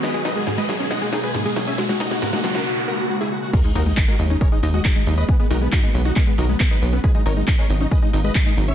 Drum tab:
CC |----------------|----------------|x---------------|----------------|
HH |xxoxxxoxxxoxxxox|xxoxxxox--------|xxoxxxoxxxoxxxox|xxoxxxoxxxoxxxox|
CP |----------------|----------------|----x-------x---|----x---x---x---|
SD |o-o-o-o-o-o-o-o-|oooooooo--------|----------------|----------------|
BD |----------------|----------------|o---o---o---o---|o---o---o---o---|

CC |----------------|
HH |xxoxxxoxxxoxxxox|
CP |----x-------x---|
SD |----------------|
BD |o---o---o---o---|